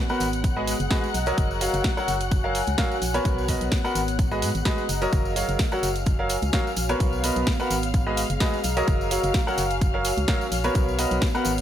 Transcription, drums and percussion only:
0.09 tambourine
0.20 open hi-hat, tambourine
0.33 closed hi-hat, tambourine
0.44 kick, closed hi-hat, tambourine
0.67 open hi-hat, tambourine
0.79 closed hi-hat, tambourine
0.91 kick, snare, closed hi-hat, tambourine
1.04 tambourine
1.14 open hi-hat, tambourine
1.26 closed hi-hat, tambourine
1.38 kick, closed hi-hat, tambourine
1.51 tambourine
1.61 open hi-hat, tambourine
1.74 closed hi-hat, tambourine
1.84 kick, snare, closed hi-hat, tambourine
1.97 tambourine
2.08 open hi-hat, tambourine
2.21 closed hi-hat, tambourine
2.31 kick, closed hi-hat, tambourine
2.55 open hi-hat, tambourine
2.67 closed hi-hat, tambourine
2.78 kick, snare, closed hi-hat, tambourine
2.91 tambourine
3.02 open hi-hat, tambourine
3.14 closed hi-hat, tambourine
3.25 kick, closed hi-hat, tambourine
3.38 tambourine
3.48 kick, open hi-hat, tambourine
3.61 closed hi-hat, tambourine
3.72 kick, snare, closed hi-hat, tambourine
3.85 tambourine
3.95 open hi-hat, tambourine
4.08 closed hi-hat, tambourine
4.19 kick, closed hi-hat, tambourine
4.31 tambourine
4.42 open hi-hat, tambourine
4.55 closed hi-hat, tambourine
4.65 kick, snare, closed hi-hat, tambourine
4.78 tambourine
4.89 open hi-hat, tambourine
5.02 closed hi-hat, tambourine
5.13 kick, closed hi-hat, tambourine
5.25 tambourine
5.36 open hi-hat, tambourine
5.48 closed hi-hat, tambourine
5.59 kick, snare, closed hi-hat, tambourine
5.72 tambourine
5.83 open hi-hat, tambourine
5.95 closed hi-hat, tambourine
6.06 kick, closed hi-hat, tambourine
6.29 open hi-hat, tambourine
6.42 closed hi-hat, tambourine
6.53 kick, snare, closed hi-hat, tambourine
6.67 tambourine
6.76 open hi-hat, tambourine
6.89 closed hi-hat, tambourine
7.00 kick, closed hi-hat, tambourine
7.13 tambourine
7.24 open hi-hat, tambourine
7.36 closed hi-hat, tambourine
7.47 kick, snare, closed hi-hat, tambourine
7.59 tambourine
7.70 open hi-hat, tambourine
7.83 closed hi-hat, tambourine
7.94 kick, closed hi-hat, tambourine
8.17 open hi-hat, tambourine
8.30 closed hi-hat, tambourine
8.40 kick, snare, closed hi-hat, tambourine
8.54 tambourine
8.64 open hi-hat, tambourine
8.77 closed hi-hat, tambourine
8.88 kick, closed hi-hat, tambourine
9.01 tambourine
9.11 open hi-hat, tambourine
9.23 closed hi-hat, tambourine
9.34 kick, snare, closed hi-hat, tambourine
9.48 tambourine
9.58 open hi-hat, tambourine
9.70 closed hi-hat, tambourine
9.81 kick, closed hi-hat, tambourine
10.05 open hi-hat, tambourine
10.16 closed hi-hat, tambourine
10.28 kick, snare, closed hi-hat, tambourine
10.41 tambourine
10.52 open hi-hat, tambourine
10.64 closed hi-hat, tambourine
10.75 kick, closed hi-hat, tambourine
10.89 tambourine
10.99 open hi-hat, tambourine
11.11 closed hi-hat, tambourine
11.22 kick, snare, closed hi-hat, tambourine
11.35 tambourine
11.45 open hi-hat, tambourine
11.58 closed hi-hat, tambourine

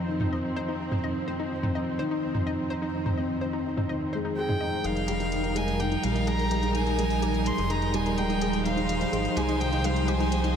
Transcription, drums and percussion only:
0.20 mid tom
0.91 mid tom
1.63 mid tom
2.35 mid tom
3.06 mid tom
3.77 mid tom
4.49 mid tom
4.84 closed hi-hat
4.97 closed hi-hat
5.08 closed hi-hat
5.20 closed hi-hat
5.32 closed hi-hat
5.44 closed hi-hat
5.56 closed hi-hat
5.68 closed hi-hat
5.80 closed hi-hat
5.92 closed hi-hat
6.03 closed hi-hat
6.16 closed hi-hat
6.27 closed hi-hat
6.39 closed hi-hat
6.51 closed hi-hat
6.63 closed hi-hat
6.75 closed hi-hat
6.87 closed hi-hat
6.99 closed hi-hat
7.10 closed hi-hat
7.22 closed hi-hat
7.34 closed hi-hat
7.46 closed hi-hat
7.58 closed hi-hat
7.70 closed hi-hat
7.82 closed hi-hat
7.94 closed hi-hat
8.06 closed hi-hat
8.18 closed hi-hat
8.30 closed hi-hat
8.41 closed hi-hat
8.53 closed hi-hat
8.66 closed hi-hat
8.77 closed hi-hat
8.89 closed hi-hat
9.01 closed hi-hat
9.13 closed hi-hat
9.25 closed hi-hat
9.37 closed hi-hat
9.49 closed hi-hat
9.61 closed hi-hat
9.73 closed hi-hat
9.84 closed hi-hat
9.96 closed hi-hat
10.08 closed hi-hat
10.20 closed hi-hat
10.32 closed hi-hat
10.44 closed hi-hat

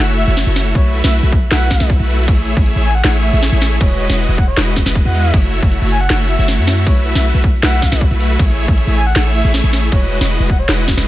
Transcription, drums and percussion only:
0.18 closed hi-hat
0.37 snare, closed hi-hat
0.56 snare, open hi-hat
0.75 kick, closed hi-hat
0.94 closed hi-hat
1.04 snare
1.13 closed hi-hat
1.32 kick, closed hi-hat
1.51 snare, closed hi-hat
1.71 kick, snare, closed hi-hat
1.80 snare
1.90 kick, closed hi-hat
2.09 closed hi-hat
2.14 closed hi-hat
2.19 closed hi-hat
2.23 closed hi-hat
2.28 kick, closed hi-hat, ride
2.47 closed hi-hat
2.57 kick
2.66 closed hi-hat
2.85 closed hi-hat
3.04 snare, closed hi-hat, ride
3.23 closed hi-hat
3.43 snare, closed hi-hat
3.62 snare, open hi-hat
3.81 kick, closed hi-hat, ride
4.00 closed hi-hat
4.10 snare
4.19 closed hi-hat
4.38 kick, closed hi-hat
4.57 snare, closed hi-hat, ride
4.76 kick, snare, closed hi-hat
4.86 snare
4.95 kick, closed hi-hat
5.15 open hi-hat
5.34 kick, closed hi-hat, ride
5.53 closed hi-hat
5.63 kick
5.72 closed hi-hat
5.91 closed hi-hat
6.10 snare, closed hi-hat, ride
6.29 closed hi-hat
6.48 snare, closed hi-hat
6.67 snare, open hi-hat
6.87 kick, closed hi-hat, ride
7.06 closed hi-hat
7.15 snare
7.25 closed hi-hat
7.44 kick, closed hi-hat
7.63 snare, closed hi-hat, ride
7.82 kick, snare, closed hi-hat
7.92 snare
8.01 kick, closed hi-hat
8.20 open hi-hat
8.39 kick, closed hi-hat, ride
8.59 closed hi-hat
8.68 kick
8.78 closed hi-hat
8.97 closed hi-hat
9.16 snare, closed hi-hat, ride
9.35 closed hi-hat
9.54 snare, closed hi-hat
9.73 snare, open hi-hat
9.92 kick, closed hi-hat, ride
10.11 closed hi-hat
10.21 snare
10.30 closed hi-hat
10.49 kick, closed hi-hat
10.69 snare, closed hi-hat, ride
10.88 kick, snare, closed hi-hat
10.98 snare

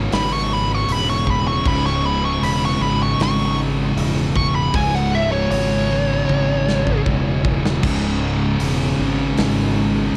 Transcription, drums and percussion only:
0.12 snare, open hi-hat
0.89 open hi-hat
1.27 kick
1.66 kick, crash
1.86 snare
2.43 open hi-hat
3.20 snare, open hi-hat
3.97 open hi-hat
4.36 kick
4.74 kick, open hi-hat
4.95 snare
5.51 open hi-hat
6.29 high tom
6.69 snare
6.87 kick
7.06 kick
7.45 kick
7.66 snare
7.83 kick, crash
8.60 open hi-hat
9.38 snare, open hi-hat

